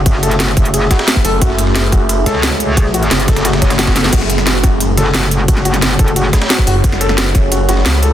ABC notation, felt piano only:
X:1
M:4/4
L:1/8
Q:1/4=177
K:F#m
V:1 name="Felt piano"
z A F z G F z A | F z G F z A F z | G F z A F c F A | F z F F z A F z |
F F z A F z F F | z A F z F F z A |]